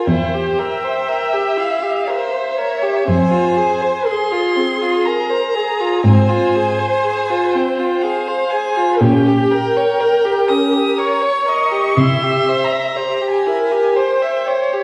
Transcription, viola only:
0, 0, Header, 1, 2, 480
1, 0, Start_track
1, 0, Key_signature, -4, "minor"
1, 0, Tempo, 991736
1, 40, Time_signature, 3, 2, 24, 8
1, 7180, End_track
2, 0, Start_track
2, 0, Title_t, "Viola"
2, 0, Program_c, 0, 41
2, 37, Note_on_c, 0, 72, 42
2, 284, Note_on_c, 0, 76, 56
2, 291, Note_off_c, 0, 72, 0
2, 1008, Note_on_c, 0, 72, 47
2, 1015, Note_off_c, 0, 76, 0
2, 1246, Note_off_c, 0, 72, 0
2, 1249, Note_on_c, 0, 73, 48
2, 1487, Note_on_c, 0, 72, 49
2, 1494, Note_off_c, 0, 73, 0
2, 1977, Note_on_c, 0, 68, 47
2, 1984, Note_off_c, 0, 72, 0
2, 2455, Note_on_c, 0, 70, 48
2, 2462, Note_off_c, 0, 68, 0
2, 2685, Note_on_c, 0, 68, 48
2, 2692, Note_off_c, 0, 70, 0
2, 2923, Note_on_c, 0, 72, 58
2, 2931, Note_off_c, 0, 68, 0
2, 3883, Note_off_c, 0, 72, 0
2, 3886, Note_on_c, 0, 72, 56
2, 4364, Note_on_c, 0, 67, 49
2, 4371, Note_off_c, 0, 72, 0
2, 4604, Note_on_c, 0, 70, 59
2, 4611, Note_off_c, 0, 67, 0
2, 5314, Note_on_c, 0, 73, 51
2, 5322, Note_off_c, 0, 70, 0
2, 5556, Note_on_c, 0, 75, 48
2, 5563, Note_off_c, 0, 73, 0
2, 5793, Note_on_c, 0, 76, 58
2, 5800, Note_off_c, 0, 75, 0
2, 6277, Note_off_c, 0, 76, 0
2, 6282, Note_on_c, 0, 67, 44
2, 6520, Note_on_c, 0, 70, 46
2, 6527, Note_off_c, 0, 67, 0
2, 6756, Note_on_c, 0, 72, 41
2, 6763, Note_off_c, 0, 70, 0
2, 6998, Note_on_c, 0, 73, 42
2, 7006, Note_off_c, 0, 72, 0
2, 7180, Note_off_c, 0, 73, 0
2, 7180, End_track
0, 0, End_of_file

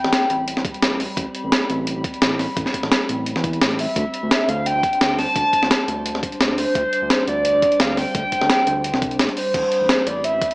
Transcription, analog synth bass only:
0, 0, Header, 1, 2, 480
1, 0, Start_track
1, 0, Key_signature, 0, "minor"
1, 0, Tempo, 348837
1, 1611, Time_signature, 4, 2, 24, 8
1, 14506, End_track
2, 0, Start_track
2, 0, Title_t, "Analog synth bass"
2, 0, Program_c, 0, 38
2, 56, Note_on_c, 0, 33, 82
2, 159, Note_off_c, 0, 33, 0
2, 409, Note_on_c, 0, 33, 96
2, 757, Note_off_c, 0, 33, 0
2, 775, Note_on_c, 0, 33, 78
2, 879, Note_off_c, 0, 33, 0
2, 1128, Note_on_c, 0, 33, 87
2, 1477, Note_off_c, 0, 33, 0
2, 1611, Note_on_c, 0, 33, 103
2, 1726, Note_off_c, 0, 33, 0
2, 1979, Note_on_c, 0, 33, 81
2, 2080, Note_off_c, 0, 33, 0
2, 2333, Note_on_c, 0, 33, 94
2, 2679, Note_off_c, 0, 33, 0
2, 2699, Note_on_c, 0, 33, 81
2, 2801, Note_off_c, 0, 33, 0
2, 3052, Note_on_c, 0, 33, 87
2, 3399, Note_off_c, 0, 33, 0
2, 3531, Note_on_c, 0, 33, 101
2, 3646, Note_off_c, 0, 33, 0
2, 3897, Note_on_c, 0, 33, 83
2, 3999, Note_off_c, 0, 33, 0
2, 4253, Note_on_c, 0, 33, 94
2, 4600, Note_off_c, 0, 33, 0
2, 4620, Note_on_c, 0, 40, 95
2, 4954, Note_off_c, 0, 40, 0
2, 4971, Note_on_c, 0, 33, 85
2, 5319, Note_off_c, 0, 33, 0
2, 5451, Note_on_c, 0, 38, 108
2, 5566, Note_off_c, 0, 38, 0
2, 5816, Note_on_c, 0, 38, 80
2, 5919, Note_off_c, 0, 38, 0
2, 6169, Note_on_c, 0, 38, 91
2, 6517, Note_off_c, 0, 38, 0
2, 6537, Note_on_c, 0, 38, 81
2, 6640, Note_off_c, 0, 38, 0
2, 6890, Note_on_c, 0, 38, 87
2, 7238, Note_off_c, 0, 38, 0
2, 7371, Note_on_c, 0, 38, 102
2, 7486, Note_off_c, 0, 38, 0
2, 7735, Note_on_c, 0, 38, 81
2, 7839, Note_off_c, 0, 38, 0
2, 8088, Note_on_c, 0, 38, 95
2, 8437, Note_off_c, 0, 38, 0
2, 8454, Note_on_c, 0, 38, 80
2, 8558, Note_off_c, 0, 38, 0
2, 8807, Note_on_c, 0, 38, 92
2, 9156, Note_off_c, 0, 38, 0
2, 9291, Note_on_c, 0, 38, 106
2, 9406, Note_off_c, 0, 38, 0
2, 9657, Note_on_c, 0, 38, 80
2, 9760, Note_off_c, 0, 38, 0
2, 10009, Note_on_c, 0, 38, 90
2, 10358, Note_off_c, 0, 38, 0
2, 10378, Note_on_c, 0, 38, 80
2, 10480, Note_off_c, 0, 38, 0
2, 10732, Note_on_c, 0, 38, 90
2, 11079, Note_off_c, 0, 38, 0
2, 11210, Note_on_c, 0, 38, 106
2, 11326, Note_off_c, 0, 38, 0
2, 11579, Note_on_c, 0, 38, 81
2, 11680, Note_off_c, 0, 38, 0
2, 11931, Note_on_c, 0, 38, 94
2, 12279, Note_off_c, 0, 38, 0
2, 12296, Note_on_c, 0, 36, 93
2, 12632, Note_off_c, 0, 36, 0
2, 12649, Note_on_c, 0, 33, 81
2, 12765, Note_off_c, 0, 33, 0
2, 13131, Note_on_c, 0, 33, 108
2, 13246, Note_off_c, 0, 33, 0
2, 13499, Note_on_c, 0, 33, 81
2, 13600, Note_off_c, 0, 33, 0
2, 13850, Note_on_c, 0, 33, 92
2, 14198, Note_off_c, 0, 33, 0
2, 14221, Note_on_c, 0, 33, 85
2, 14321, Note_off_c, 0, 33, 0
2, 14506, End_track
0, 0, End_of_file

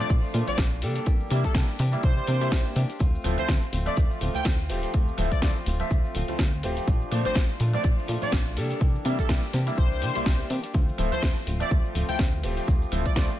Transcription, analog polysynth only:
0, 0, Header, 1, 2, 480
1, 0, Start_track
1, 0, Key_signature, -1, "minor"
1, 0, Tempo, 483871
1, 1057, Time_signature, 4, 2, 24, 8
1, 13289, End_track
2, 0, Start_track
2, 0, Title_t, "Analog polysynth"
2, 0, Program_c, 0, 90
2, 0, Note_on_c, 0, 74, 91
2, 107, Note_off_c, 0, 74, 0
2, 473, Note_on_c, 0, 74, 91
2, 585, Note_off_c, 0, 74, 0
2, 1433, Note_on_c, 0, 69, 90
2, 1545, Note_off_c, 0, 69, 0
2, 2020, Note_on_c, 0, 72, 92
2, 2127, Note_off_c, 0, 72, 0
2, 2150, Note_on_c, 0, 72, 96
2, 2631, Note_off_c, 0, 72, 0
2, 3355, Note_on_c, 0, 72, 94
2, 3466, Note_off_c, 0, 72, 0
2, 3836, Note_on_c, 0, 74, 93
2, 3946, Note_off_c, 0, 74, 0
2, 4313, Note_on_c, 0, 79, 91
2, 4425, Note_off_c, 0, 79, 0
2, 5272, Note_on_c, 0, 74, 91
2, 5340, Note_off_c, 0, 74, 0
2, 5386, Note_on_c, 0, 74, 80
2, 5468, Note_off_c, 0, 74, 0
2, 7195, Note_on_c, 0, 72, 91
2, 7306, Note_off_c, 0, 72, 0
2, 7681, Note_on_c, 0, 74, 91
2, 7789, Note_off_c, 0, 74, 0
2, 8157, Note_on_c, 0, 74, 91
2, 8267, Note_off_c, 0, 74, 0
2, 9115, Note_on_c, 0, 69, 93
2, 9226, Note_off_c, 0, 69, 0
2, 9700, Note_on_c, 0, 72, 95
2, 9807, Note_off_c, 0, 72, 0
2, 9831, Note_on_c, 0, 72, 100
2, 10312, Note_off_c, 0, 72, 0
2, 11032, Note_on_c, 0, 72, 92
2, 11145, Note_off_c, 0, 72, 0
2, 11514, Note_on_c, 0, 74, 97
2, 11626, Note_off_c, 0, 74, 0
2, 11987, Note_on_c, 0, 79, 93
2, 12102, Note_off_c, 0, 79, 0
2, 12951, Note_on_c, 0, 74, 92
2, 13019, Note_off_c, 0, 74, 0
2, 13057, Note_on_c, 0, 74, 77
2, 13144, Note_off_c, 0, 74, 0
2, 13289, End_track
0, 0, End_of_file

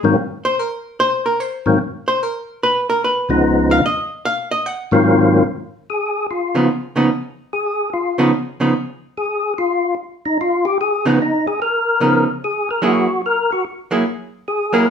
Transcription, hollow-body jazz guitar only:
0, 0, Header, 1, 2, 480
1, 0, Start_track
1, 0, Tempo, 408163
1, 1158, Time_signature, 4, 2, 24, 8
1, 17522, End_track
2, 0, Start_track
2, 0, Title_t, "Hollow-body jazz guitar"
2, 0, Program_c, 0, 26
2, 529, Note_on_c, 0, 72, 89
2, 698, Note_off_c, 0, 72, 0
2, 698, Note_on_c, 0, 70, 79
2, 1167, Note_off_c, 0, 70, 0
2, 1174, Note_on_c, 0, 72, 102
2, 1474, Note_off_c, 0, 72, 0
2, 1478, Note_on_c, 0, 70, 74
2, 1648, Note_off_c, 0, 70, 0
2, 1648, Note_on_c, 0, 72, 90
2, 2122, Note_off_c, 0, 72, 0
2, 2443, Note_on_c, 0, 72, 98
2, 2620, Note_off_c, 0, 72, 0
2, 2620, Note_on_c, 0, 70, 75
2, 3086, Note_off_c, 0, 70, 0
2, 3097, Note_on_c, 0, 71, 93
2, 3393, Note_off_c, 0, 71, 0
2, 3405, Note_on_c, 0, 70, 81
2, 3555, Note_off_c, 0, 70, 0
2, 3580, Note_on_c, 0, 71, 81
2, 4013, Note_off_c, 0, 71, 0
2, 4365, Note_on_c, 0, 77, 109
2, 4514, Note_off_c, 0, 77, 0
2, 4536, Note_on_c, 0, 75, 90
2, 4969, Note_off_c, 0, 75, 0
2, 5003, Note_on_c, 0, 77, 110
2, 5304, Note_off_c, 0, 77, 0
2, 5309, Note_on_c, 0, 75, 90
2, 5481, Note_off_c, 0, 75, 0
2, 5481, Note_on_c, 0, 78, 98
2, 5954, Note_off_c, 0, 78, 0
2, 7699, Note_on_c, 0, 49, 50
2, 7704, Note_on_c, 0, 53, 58
2, 7710, Note_on_c, 0, 59, 62
2, 7713, Note_on_c, 0, 63, 59
2, 7848, Note_off_c, 0, 49, 0
2, 7850, Note_off_c, 0, 53, 0
2, 7853, Note_off_c, 0, 59, 0
2, 7855, Note_off_c, 0, 63, 0
2, 8181, Note_on_c, 0, 49, 54
2, 8187, Note_on_c, 0, 53, 61
2, 8192, Note_on_c, 0, 59, 65
2, 8197, Note_on_c, 0, 63, 71
2, 8329, Note_off_c, 0, 49, 0
2, 8332, Note_off_c, 0, 53, 0
2, 8334, Note_off_c, 0, 59, 0
2, 8337, Note_off_c, 0, 63, 0
2, 9623, Note_on_c, 0, 49, 68
2, 9627, Note_on_c, 0, 53, 58
2, 9630, Note_on_c, 0, 59, 73
2, 9637, Note_on_c, 0, 63, 69
2, 9770, Note_off_c, 0, 49, 0
2, 9773, Note_off_c, 0, 53, 0
2, 9774, Note_off_c, 0, 59, 0
2, 9778, Note_off_c, 0, 63, 0
2, 10115, Note_on_c, 0, 49, 56
2, 10121, Note_on_c, 0, 53, 57
2, 10123, Note_on_c, 0, 59, 56
2, 10128, Note_on_c, 0, 63, 59
2, 10257, Note_off_c, 0, 49, 0
2, 10260, Note_off_c, 0, 53, 0
2, 10261, Note_off_c, 0, 59, 0
2, 10263, Note_off_c, 0, 63, 0
2, 12999, Note_on_c, 0, 49, 60
2, 13005, Note_on_c, 0, 53, 55
2, 13009, Note_on_c, 0, 63, 64
2, 13012, Note_on_c, 0, 59, 65
2, 13141, Note_off_c, 0, 49, 0
2, 13144, Note_off_c, 0, 53, 0
2, 13146, Note_off_c, 0, 63, 0
2, 13148, Note_off_c, 0, 59, 0
2, 14117, Note_on_c, 0, 49, 55
2, 14123, Note_on_c, 0, 53, 54
2, 14126, Note_on_c, 0, 59, 54
2, 14129, Note_on_c, 0, 63, 57
2, 14402, Note_off_c, 0, 49, 0
2, 14406, Note_off_c, 0, 53, 0
2, 14407, Note_off_c, 0, 59, 0
2, 14408, Note_off_c, 0, 63, 0
2, 15075, Note_on_c, 0, 54, 62
2, 15082, Note_on_c, 0, 58, 61
2, 15086, Note_on_c, 0, 64, 69
2, 15090, Note_on_c, 0, 68, 72
2, 15362, Note_off_c, 0, 54, 0
2, 15366, Note_off_c, 0, 58, 0
2, 15368, Note_off_c, 0, 64, 0
2, 15370, Note_off_c, 0, 68, 0
2, 16357, Note_on_c, 0, 54, 58
2, 16362, Note_on_c, 0, 58, 67
2, 16365, Note_on_c, 0, 64, 60
2, 16371, Note_on_c, 0, 68, 60
2, 16503, Note_off_c, 0, 54, 0
2, 16506, Note_off_c, 0, 58, 0
2, 16508, Note_off_c, 0, 64, 0
2, 16511, Note_off_c, 0, 68, 0
2, 17318, Note_on_c, 0, 54, 62
2, 17326, Note_on_c, 0, 58, 64
2, 17328, Note_on_c, 0, 64, 63
2, 17330, Note_on_c, 0, 68, 75
2, 17465, Note_off_c, 0, 54, 0
2, 17468, Note_off_c, 0, 58, 0
2, 17469, Note_off_c, 0, 64, 0
2, 17471, Note_off_c, 0, 68, 0
2, 17522, End_track
0, 0, End_of_file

